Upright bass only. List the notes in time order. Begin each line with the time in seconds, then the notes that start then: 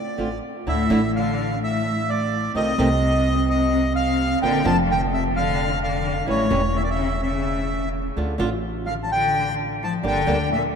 0.19 A1
0.67 D2
0.90 A1
2.55 C2
2.78 C2
4.43 A#1
4.66 F1
6.29 A1
6.51 E1
8.16 D2
8.39 A1
10.04 G1
10.27 D2